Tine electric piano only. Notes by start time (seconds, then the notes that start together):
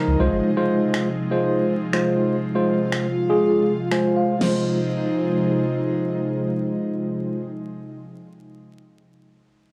Already playing: F3 D#4 A#4
0.19 G#3 F4 C5
0.57 G#3 F4 C5
1.31 G#3 F4 C5
1.93 G#3 F4 C5
2.55 G#3 F4 C5
3.29 G#3 F4 G#4
3.91 G#3 F4 C5 G#5
4.16 F5
4.39 G#3 F4 C5